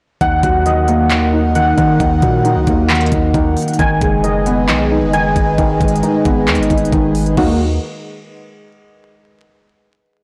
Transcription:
0.21 0.42 D#2 loud
0.21 0.64 D#3 medium
0.21 3.76 D#3 medium
0.21 3.76 D#4 medium
0.21 3.76 A#4 medium
0.21 1.54 F#5 loud
0.21 3.76 F#5 medium
0.21 kick loud
0.21 closed hi-hat medium
0.43 1.74 D#2 loud
0.43 1.55 F#3 medium
0.43 kick loud
0.43 closed hi-hat medium
0.66 1.09 D#3 medium
0.66 3.35 D#5 medium
0.66 closed hi-hat medium
0.88 2.00 A#3 loud
0.88 closed hi-hat medium
1.10 1.54 D#3 medium
1.10 clap loud
1.10 closed hi-hat medium
1.33 2.45 D#4 medium
1.55 1.99 D#3 medium
1.55 3.79 F#5 loud
1.55 closed hi-hat medium
1.78 1.99 D#3 loud
1.78 kick loud
1.78 closed hi-hat medium
2.00 2.22 D#2 loud
2.00 2.43 D#3 medium
2.00 kick loud
2.00 closed hi-hat medium
2.22 2.57 A#2 loud
2.22 3.34 F#3 medium
2.22 kick loud
2.22 closed hi-hat medium
2.45 2.88 D#3 medium
2.45 3.79 D#4 medium
2.45 closed hi-hat medium
2.56 2.67 C#2 loud
2.67 3.10 D#2 loud
2.67 3.79 A#3 medium
2.67 kick loud
2.67 closed hi-hat medium
2.89 3.33 D#3 medium
2.89 clap loud
2.89 closed hi-hat medium
2.95 closed hi-hat medium
3.01 closed hi-hat medium
3.06 closed hi-hat medium
3.12 3.33 D#2 loud
3.12 3.79 D#4 medium
3.12 kick loud
3.12 closed hi-hat medium
3.34 3.56 D#2 loud
3.34 3.78 D#3 medium
3.34 kick loud
3.34 closed hi-hat medium
3.57 closed hi-hat soft
3.57 open hi-hat medium
3.62 closed hi-hat medium
3.68 closed hi-hat medium
3.73 closed hi-hat medium
3.79 4.01 G#1 loud
3.79 4.23 D#3 medium
3.79 7.34 G#3 medium
3.79 7.34 G#4 medium
3.79 7.34 B4 medium
3.79 7.34 D#5 medium
3.79 5.12 G#5 loud
3.79 kick loud
3.79 closed hi-hat medium
4.01 4.70 F#1 loud
4.01 5.13 G#3 medium
4.01 kick loud
4.01 closed hi-hat medium
4.23 4.67 D#3 medium
4.23 6.92 D#5 medium
4.23 closed hi-hat medium
4.46 5.58 B3 loud
4.46 closed hi-hat medium
4.69 5.04 B1 loud
4.69 5.12 D#3 medium
4.69 clap loud
4.69 closed hi-hat medium
4.91 6.03 D#4 medium
5.02 5.34 F#1 loud
5.13 5.57 D#3 medium
5.13 7.37 G#5 loud
5.13 closed hi-hat medium
5.36 5.57 G#1 loud
5.36 kick loud
5.36 closed hi-hat medium
5.58 5.80 G#1 loud
5.58 6.02 D#3 medium
5.58 kick loud
5.58 closed hi-hat medium
5.81 6.02 G#1 loud
5.81 6.93 G#3 medium
5.81 kick loud
5.81 closed hi-hat medium
5.88 closed hi-hat medium
5.96 closed hi-hat medium
6.03 6.46 D#3 medium
6.03 7.36 D#4 medium
6.03 closed hi-hat medium
6.25 6.49 G#1 loud
6.25 7.37 B3 loud
6.25 kick loud
6.25 closed hi-hat medium
6.48 6.61 D#2 loud
6.48 6.91 D#3 medium
6.48 clap loud
6.48 closed hi-hat medium
6.55 6.70 G#1 loud
6.55 closed hi-hat medium
6.63 closed hi-hat medium
6.70 6.92 G#1 loud
6.70 7.36 D#4 medium
6.70 kick loud
6.70 closed hi-hat medium
6.78 closed hi-hat medium
6.85 closed hi-hat medium
6.92 7.36 G#1 loud
6.92 7.36 D#3 medium
6.92 kick loud
6.92 closed hi-hat medium
7.15 closed hi-hat medium
7.15 open hi-hat medium
7.26 closed hi-hat soft
7.37 7.79 D#2 loud
7.37 7.58 D#3 medium
7.37 7.58 F#3 medium
7.37 7.58 A#3 medium
7.37 7.58 D#4 medium
7.37 7.58 D#4 loud
7.37 7.58 F#4 medium
7.37 kick loud
7.37 crash medium

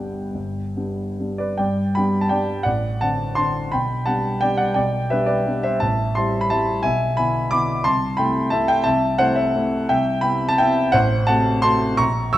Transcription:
0.00 0.34 G1 soft
0.00 0.35 G2 soft
0.00 0.38 G3 soft
0.00 0.37 B3 soft
0.00 0.37 D4 soft
0.00 1.40 G5 medium
0.34 0.74 G1 soft
0.34 0.75 G2 soft
0.77 1.15 G3 soft
0.77 1.15 B3 soft
0.77 1.15 D4 soft
1.20 1.56 G3 soft
1.20 1.56 B3 soft
1.20 1.56 D4 soft
1.38 1.58 B4 soft
1.38 1.58 D5 medium
1.58 1.94 G2 medium
1.58 1.92 D5 medium
1.58 1.94 G5 medium
1.95 2.29 G3 soft
1.95 2.29 B3 soft
1.95 2.29 D4 soft
1.95 2.21 G5 medium
1.95 2.22 B5 medium
2.21 2.31 A5 medium
2.29 2.62 G3 soft
2.29 2.63 B3 soft
2.29 2.63 D4 soft
2.29 2.63 D5 medium
2.29 2.65 G5 medium
2.63 3.00 A1 medium
2.63 2.98 D5 medium
2.63 3.00 F#5 medium
3.01 3.34 D3 soft
3.01 3.35 C4 soft
3.01 3.35 D4 soft
3.01 3.35 F#5 medium
3.01 3.35 A5 medium
3.35 3.69 D3 soft
3.35 3.69 C4 soft
3.35 3.69 D4 soft
3.35 3.70 A5 medium
3.35 3.72 C6 medium
3.72 4.06 B1 soft
3.72 4.05 G5 medium
3.72 4.06 B5 medium
4.06 4.39 G3 soft
4.06 4.39 B3 soft
4.06 4.39 D4 soft
4.06 4.40 F#5 medium
4.06 4.42 A5 medium
4.41 4.74 G3 soft
4.41 4.74 B3 soft
4.41 4.75 D4 soft
4.41 4.57 D5 medium
4.41 4.60 G5 loud
4.57 4.74 D5 medium
4.57 4.76 F#5 medium
4.74 5.10 B1 medium
4.74 5.09 D5 medium
4.74 5.10 G5 medium
5.10 5.43 G3 soft
5.10 5.44 B3 soft
5.10 5.44 D4 soft
5.10 5.26 B4 medium
5.10 5.29 E5 medium
5.26 5.61 B4 medium
5.26 5.63 D5 medium
5.47 5.78 G3 soft
5.47 5.78 B3 soft
5.47 5.79 D4 soft
5.63 5.80 C5 medium
5.63 5.80 E5 medium
5.80 6.15 A1 medium
5.80 6.13 E5 medium
5.80 6.15 A5 medium
6.15 6.48 G3 soft
6.15 6.48 C4 soft
6.15 6.49 E4 soft
6.15 6.41 A5 medium
6.15 6.42 C6 medium
6.41 6.50 B5 medium
6.50 6.81 G3 soft
6.50 6.81 C4 soft
6.50 6.82 E4 soft
6.50 6.82 E5 medium
6.50 6.84 A5 loud
6.83 7.17 B1 medium
6.83 7.15 E5 medium
6.83 7.16 G#5 loud
7.17 7.49 D3 soft
7.17 7.49 B3 soft
7.17 7.50 E4 medium
7.17 7.50 G#5 medium
7.17 7.51 B5 medium
7.51 7.82 D3 soft
7.51 7.82 B3 soft
7.51 7.82 E4 soft
7.51 7.83 B5 medium
7.51 7.85 D6 loud
7.84 8.18 C2 medium
7.84 8.16 A5 medium
7.84 8.18 C6 loud
8.17 8.49 C3 soft
8.17 8.49 A3 soft
8.17 8.49 E4 medium
8.17 8.50 G5 medium
8.17 8.52 B5 medium
8.50 8.83 C3 medium
8.50 8.83 A3 medium
8.50 8.83 E4 medium
8.50 8.68 E5 medium
8.50 8.68 A5 loud
8.68 8.84 E5 medium
8.68 8.85 G5 loud
8.84 9.19 C2 medium
8.84 9.17 E5 medium
8.84 9.18 A5 loud
9.18 9.51 C3 medium
9.18 9.52 A3 soft
9.18 9.52 E4 medium
9.18 9.35 C5 medium
9.18 9.37 F#5 loud
9.36 9.70 C5 medium
9.36 9.72 E5 medium
9.55 9.86 C3 medium
9.55 9.86 A3 medium
9.55 9.86 E4 medium
9.89 10.22 C2 medium
9.89 10.20 E5 medium
9.89 10.21 G5 loud
10.21 10.55 C3 soft
10.21 10.55 B3 medium
10.21 10.55 E4 medium
10.21 10.48 G5 medium
10.21 10.49 B5 loud
10.49 10.58 A5 loud
10.58 10.91 C3 medium
10.58 10.91 B3 soft
10.58 10.92 E4 medium
10.58 10.92 E5 medium
10.58 10.94 G5 loud
10.92 11.27 A1 medium
10.92 11.26 C5 medium
10.92 11.27 F#5 loud
11.27 11.61 C3 medium
11.27 11.61 A3 medium
11.27 11.61 F#4 medium
11.27 11.61 F#5 medium
11.27 11.62 A5 loud
11.62 11.96 C3 soft
11.62 11.96 A3 medium
11.62 11.96 F#4 medium
11.62 11.97 A5 medium
11.62 11.98 C6 loud
11.97 12.34 A#1 medium
11.97 12.32 A#5 medium
11.97 12.32 C#6 loud
12.33 12.38 E3 medium
12.33 12.38 C#6 medium
12.33 12.38 E6 loud

